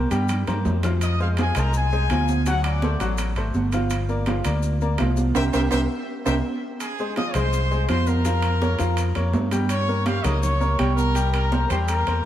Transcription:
0.11 G2 G3 G4 G5, high conga, high timbale, maracas
0.28 low conga, high timbale, maracas
0.47 G2 A#3 A#4 C5, low conga, high timbale, maracas
0.65 F2, low conga, low timbale, maracas
0.83 F3 F4 F5, low conga, high timbale, maracas
1.01 D#5 D#6, high conga, high timbale, maracas
1.20 G#3 G#4 C5 F5, high conga, maracas
1.37 F3 F4 G#4 F5, high conga, high timbale, maracas
1.42 G#5
1.55 C2 G#3 G#4 A#4 C5, high conga, high timbale, maracas
1.59 A#5
1.74 G#4 G#5, high conga, maracas
1.92 G#3 G#4 C5, high conga, maracas
2.10 D2 F3 F4 F5, high conga, high timbale, maracas
2.28 high conga, maracas
2.46 F#3 F#4 F#5, high conga, high timbale, maracas
2.64 D5 D6, high conga, high timbale, maracas
2.82 A3 A4 C5, high conga, maracas
3.00 A1 F#3 F#4 F#5, high conga, high timbale, maracas
3.18 high conga, high timbale, maracas
3.36 G#1 A3 A4 C5, high conga, high timbale, maracas
3.54 G1, high conga, maracas
3.72 F3 F4 F5, high conga, high timbale, maracas
3.90 high conga, high timbale, maracas
4.09 A#3 A#4 D5, high conga, maracas
4.26 F3 F4 F5, high conga, high timbale, maracas
4.45 D2 A#3 A#4 D5, high conga, high timbale, maracas
4.62 high conga, maracas
4.81 A#3 A#4 D5, high conga, maracas
4.98 C2 F3 F4 F5, high conga, high timbale, low timbale, maracas
5.17 high conga, maracas
5.35 C2 G4 A#4 C5 E5 G5, high conga, high timbale, maracas
5.53 C2 G4 A#4 C5 E5 G5, high conga, high timbale, maracas
5.71 C2 G4 A#4 C5 E5 G5, high conga, high timbale, maracas
6.25 C2 G4 A#4 C5 E5 G5, high conga, high timbale, maracas
6.80 G#4 G#5, high conga, high timbale, maracas
6.98 G#3 G#4 C5, high conga, maracas
7.16 F3 F4 D#5 F5 D#6, high conga, high timbale, maracas
7.34 C2 G#3 G#4 C5 C6, high conga, low conga, high timbale, maracas
7.53 high conga, maracas
7.71 G#3 G#4 C5, high conga, maracas
7.89 F2 F3 F4 C5 F5 C6, high conga, high timbale, maracas
8.07 A#4 A#5, high conga, maracas
8.25 F3 F4 F5, high conga, high timbale, maracas
8.42 high conga, high timbale, maracas
8.62 A#3 A#4 C#5, high conga, maracas
8.79 F2 F3 F4 F5, high conga, high timbale, maracas
8.97 high conga, high timbale, maracas
9.15 F2 A#3 A#4 C#5, high conga, high timbale, maracas
9.33 G2, high conga, low timbale, maracas
9.51 G3 G4 G5, high conga, high timbale, maracas
9.69 C#5 C#6, high conga, high timbale, maracas
9.88 A#3 A#4 C#5, high conga, maracas
10.06 G3 G4 F5 G5, high conga, high timbale, maracas
10.23 C#2 A#3 A#4 C#5 D#5 D#6, high conga, low conga, high timbale, maracas
10.41 C#5 C#6, high conga, low conga, maracas
10.60 A#3 A#4 C#5, high conga, maracas
10.79 C2 G3 G4 G5, high conga, high timbale, maracas
10.96 A#4 A#5, high conga, maracas
11.15 G3 G4 G5, high conga, high timbale, maracas
11.33 A#4 A#5, high conga, high timbale, maracas
11.52 A#3 A#4 C5, high conga, maracas
11.69 E2 G3 G4 C5 G5 C6, high conga, high timbale, maracas
11.87 A#4 A#5, high conga, high timbale, maracas
12.06 E2 A#3 A#4 C5, high conga, high timbale, maracas

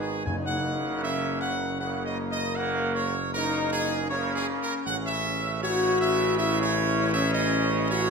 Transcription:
Already playing: G#1 D#3 B3 D#4
0.00 G#4
0.26 F#1 F#2 C#3 A#3 D#4 G#5
0.46 F#5
1.03 C#4 E5
1.41 F#5
1.80 C#3 A#3 F#5
2.06 D#5
2.31 D#5
2.56 C#3 A#3 F#5
2.94 C#5
3.34 C#3 A#3 D#4 A#4
3.72 G#4
4.10 C#3 A#3 C#4 C#5
4.35 G#4
4.62 A#4
4.86 A1 C#3 C#4 F#5
5.05 E5
5.62 F#4 C#5
6.00 E5
6.37 E4 E5
6.62 C#5
7.14 C#4 E5
7.33 D#5
7.91 F#4 C#5

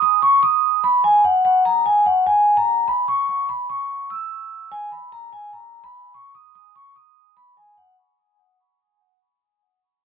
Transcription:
0.02 D#6
0.22 C#6
0.43 D#6
0.84 B5
1.04 G#5
1.25 F#5
1.45 F#5
1.65 A#5
1.86 G#5
2.06 F#5
2.27 G#5
2.57 A#5
2.88 B5
3.08 C#6
3.29 C#6
3.49 B5
3.70 C#6
4.10 E6
4.72 G#5
4.92 B5
5.12 A#5
5.33 G#5
5.53 A#5
5.84 B5
6.14 C#6
6.35 D#6
6.55 D#6
6.76 C#6
6.96 D#6
7.37 B5
7.57 G#5
7.77 F#5

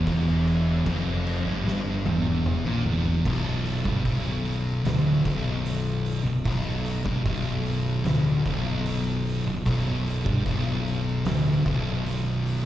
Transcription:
0.04 E1 E2, kick, crash
0.47 crash
0.85 F1 F2, kick, crash
1.27 crash
1.45 G1 G2
1.65 G1 G2, snare
2.05 E1 E2, high tom
2.26 high tom
2.46 mid tom
2.64 A#1 A#2
2.85 E1 E2, floor tom
3.06 floor tom
3.25 B0 B1, kick, crash
3.66 open hi-hat
3.85 G1 G2, kick
4.05 B0 B1, kick, open hi-hat
4.45 open hi-hat
4.84 D1 D2, snare, open hi-hat
5.24 B0 B1, kick, open hi-hat
5.66 open hi-hat
6.05 open hi-hat
6.24 B0 B1
6.45 B0 B1, kick, open hi-hat
6.86 open hi-hat
7.04 G1 G2, kick
7.24 B0 B1, kick, open hi-hat
7.66 open hi-hat
8.04 D1 D2, snare, open hi-hat
8.45 B0 B1, kick, open hi-hat
8.86 open hi-hat
9.26 open hi-hat
9.46 B0 B1
9.65 B0 B1, kick, open hi-hat
10.07 open hi-hat
10.25 G1 G2, kick
10.45 B0 B1, kick, open hi-hat
10.86 open hi-hat
11.25 D1 D2, snare, open hi-hat
11.64 B0 B1, kick, open hi-hat
11.88 snare
12.06 open hi-hat
12.46 open hi-hat

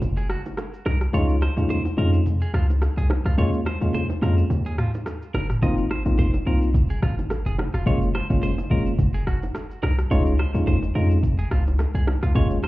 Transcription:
0.02 F#1, low conga, shaker
0.17 G#4, shaker
0.30 F#4, cross-stick, shaker
0.45 low bongo, shaker
0.57 cross-stick, high bongo, shaker
0.74 shaker
0.86 C2 A#4, cross-stick, high bongo, low bongo
1.01 cross-stick, shaker
1.13 C#2 G#3 C#4 D#4 F4 C#5, low conga, shaker
1.29 shaker
1.42 C5, cross-stick, low bongo
1.57 D#2 G#3 C#4 D#4 F4, high bongo, shaker
1.70 C5, high bongo, low conga, shaker
1.85 low bongo, shaker
1.97 F2 G#3 C#4 D#4 F4 A#4
2.13 shaker
2.26 low conga, shaker
2.42 G#4, shaker
2.54 C#2 F4, cross-stick, shaker
2.70 low bongo, shaker
2.82 cross-stick, high bongo, shaker
2.97 C2 G#4, shaker
3.10 cross-stick, high bongo, low bongo
3.25 C#2 F4, cross-stick, shaker
3.38 D#2 G#3 A#3 C#4 F4 C#5, low conga, shaker
3.53 shaker
3.66 C5, cross-stick, low bongo, shaker
3.81 D#2 G#3 A#3 C#4 F4, high bongo, shaker
3.94 C5, high bongo, low conga, shaker
4.10 low bongo, shaker
4.22 F2 G#3 A#3 C#4 F4 A#4, cross-stick, shaker
4.38 shaker
4.50 D#2, low conga, shaker
4.66 G#4, shaker
4.78 F4, cross-stick, mid tom, shaker
4.94 low bongo, shaker
5.06 cross-stick, high bongo, shaker
5.22 shaker
5.34 F#1 A#4, cross-stick, high bongo, low bongo, shaker
5.50 cross-stick, mid tom, shaker
5.62 G#1 A#3 C4 D#4 F4 D#5, kick, low conga, shaker
5.78 shaker
5.91 C5, cross-stick, low bongo
6.05 A#1 A#3 C4 D#4 F4, high bongo, shaker
6.18 C5, kick, high bongo, low conga, shaker
6.34 low bongo, shaker
6.46 C2 A#3 C4 D#4 F4 A#4
6.62 shaker
6.74 kick, low conga, shaker
6.90 G#4, shaker
7.02 G#1 F4, kick, cross-stick, shaker
7.18 low bongo, shaker
7.30 cross-stick, high bongo, shaker
7.46 F1 G#4, shaker
7.58 cross-stick, high bongo, low bongo
7.74 F1 F4, cross-stick, shaker
7.86 F#1 G#3 A#3 C#4 F4 C#5, kick, low conga, shaker
8.02 shaker
8.15 C5, cross-stick, low bongo
8.30 F#1 G#3 A#3 C#4 F4, kick, high bongo, shaker
8.43 C5, high bongo, low conga, shaker
8.58 low bongo, shaker
8.70 G#1 G#3 A#3 C#4 F4 A#4, kick
8.86 shaker
8.99 F#1, kick, low conga, shaker
9.14 G#4, shaker
9.27 F#4, kick, cross-stick, shaker
9.43 low bongo, shaker
9.55 cross-stick, high bongo, shaker
9.71 shaker
9.83 C2 A#4, cross-stick, high bongo, low bongo
9.99 cross-stick, shaker
10.11 C#2 G#3 C#4 D#4 F4 C#5, kick, low conga, shaker
10.26 shaker
10.39 C5, cross-stick, low bongo
10.54 D#2 G#3 C#4 D#4 F4, high bongo, shaker
10.67 C5, kick, high bongo, low conga, shaker
10.82 low bongo, shaker
10.95 F2 G#3 C#4 D#4 F4 A#4
11.11 shaker
11.23 kick, low conga, shaker
11.39 G#4, shaker
11.51 C#2 F4, kick, cross-stick, shaker
11.67 low bongo, shaker
11.79 cross-stick, high bongo, shaker
11.95 C2 G#4, shaker
12.07 cross-stick, high bongo, low bongo
12.23 C#2 F4, cross-stick, shaker
12.35 D#2 G#3 A#3 C#4 F4 C#5, kick, low conga, shaker
12.50 shaker
12.63 C5, cross-stick, low bongo, shaker

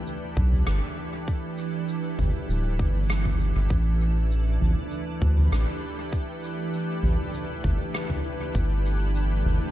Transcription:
Already playing: E3 A3 D4 G4 B4
0.07 cabasa
0.37 B1, kick
0.52 mid tom
0.67 G1, cross-stick, cabasa
1.28 kick, cabasa
1.58 cabasa
1.88 cabasa
2.19 G1, kick, mid tom, cabasa
2.49 D1, cabasa
2.79 G1, kick, mid tom
3.09 cross-stick, cabasa
3.25 kick, mid tom
3.40 cabasa
3.56 G1
3.70 A1, kick, cabasa
3.96 A3
4.01 D4, cabasa
4.31 cabasa
4.53 B4
4.61 A1, mid tom
4.91 cabasa
5.22 D2 G4, kick
5.38 mid tom
5.52 A1, cross-stick, cabasa
6.13 kick, cabasa
6.43 cabasa
6.74 cabasa
7.03 A1, mid tom
7.34 cabasa
7.64 G1, kick, mid tom
7.94 cross-stick, cabasa
8.09 kick, mid tom
8.54 G1, kick, cabasa
8.86 cabasa
9.15 cabasa
9.45 G1, mid tom

